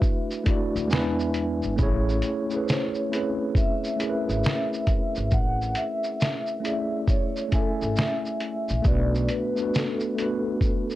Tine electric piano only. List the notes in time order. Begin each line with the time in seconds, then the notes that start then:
Already playing: A3 D4 E4 F#4 B4
0.44 A3 D4 E4
0.49 F#4 D5
0.88 G#3 B3 D4 G#5
0.93 E4 B4
1.19 E5
1.76 A3 C#4 E4
1.81 G#4 C#5
2.49 A3 C#4 E4
2.54 G#4 B4
3.09 A3 C4 E4
3.14 C#4 G#4 B4
3.97 A3 C#4 E4
4.01 G#4 A#4
4.10 B4
6.60 A3 C#4 E4
6.65 G#4 D5
6.73 E5
7.49 A3 C#4 E4
7.54 E5 G#5
8.82 A3 B3 D4
8.87 F#4 B4
9.55 A3 B3 D4
9.60 F#4 B4
10.15 A3 B3 D4
10.20 F#4 B4